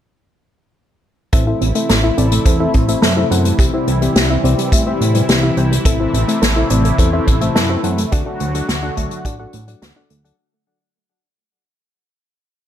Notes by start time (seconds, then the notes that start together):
1.33 A1 C3 E3 A3 C4 E4 A4 C5 E5, kick, closed hi-hat
1.47 C4 E4 A4 C5 E5
1.61 A1 C4, closed hi-hat
1.75 A3 C4 E4 A4 C5 E5, closed hi-hat
1.89 A1 A4, snare, closed hi-hat
2.04 C4 E4 A4 C5 E5
2.18 A1 C4 E4 A4 C5 D5, closed hi-hat
2.32 A3, closed hi-hat
2.45 E2 C4 E4 A4 C5 E5, kick, closed hi-hat
2.60 C4 E4 A4 C5 E5
2.74 A1 C4, kick, closed hi-hat
2.88 A3 C4 E4 A4 C5 E5, closed hi-hat
3.02 F#2 A4, snare, closed hi-hat
3.17 C4 E4 A4 C5 E5
3.31 F#2 C4 E4 A4 C5 F#5, closed hi-hat
3.45 A3, closed hi-hat
3.59 C2 G3 C4 E4 G4 C5 E5, kick, closed hi-hat
3.73 C4 E4 G4 C5 E5
3.87 C2 C4, closed hi-hat
4.01 G3 C4 E4 G4 C5 E5, closed hi-hat
4.16 C2 G4, snare, closed hi-hat
4.30 C4 E4 G4 C5 E5
4.44 C2 C4 E4 G4 C5 D5, closed hi-hat
4.58 G3, closed hi-hat
4.72 A2 C4 E4 G4 C5 E5, kick, closed hi-hat
4.86 C4 E4 G4 C5 E5
5.01 A2 C4, closed hi-hat
5.15 G3 C4 E4 G4 C5 E5, closed hi-hat
5.29 C2 G4, snare, closed hi-hat
5.43 C4 E4 G4 C5 E5
5.57 C2 C4 E4 G4 C5 G5, closed hi-hat
5.71 G3, closed hi-hat
5.85 A1 C3 A3 C4 E4 A4 C5 E5, kick, closed hi-hat
6.00 C4 E4 A4 C5 E5
6.14 A1 C4, closed hi-hat
6.28 A3 C4 E4 A4 C5 E5, closed hi-hat
6.42 A1 A4, snare, closed hi-hat
6.56 C4 E4 A4 C5 E5
6.70 A1 C4 E4 A4 C5 D5, closed hi-hat
6.84 A3, closed hi-hat
6.98 E2 C4 E4 A4 C5 E5, kick, closed hi-hat
7.13 C4 E4 A4 C5 E5
7.27 A1 C4, kick, closed hi-hat
7.41 A3 C4 E4 A4 C5 E5, closed hi-hat
7.55 F#2 A4, snare, closed hi-hat
7.69 C4 E4 A4 C5 E5
7.83 F#2 C4 E4 A4 C5 F#5, closed hi-hat
7.98 A3, closed hi-hat
8.12 D2 D3 F#3 D4 F#4 A4 D5 F#5, kick, closed hi-hat
8.26 D4 F#4 A4 D5 F#5
8.40 D2 A3, closed hi-hat
8.54 F#3 D4 F#4 A4 D5 F#5, closed hi-hat
8.68 D2 F#4, snare, closed hi-hat
8.83 D4 F#4 A4 D5 F#5
8.97 D2 A3 D4 F#4 A4 D5 E5, kick, closed hi-hat
9.11 F#3, closed hi-hat
9.25 A1 D4 F#4 A4 D5 F#5, kick, closed hi-hat
9.39 D4 F#4 A4 D5 F#5
9.53 A1 A3, closed hi-hat
9.68 F#3 D4 F#4 A4 D5 F#5, closed hi-hat
9.82 D2 F#4, snare, closed hi-hat
9.96 D4 F#4 A4 D5 F#5
10.10 D2 A3, closed hi-hat
10.24 F#3 D4 F#4 A4 D5 F#5, closed hi-hat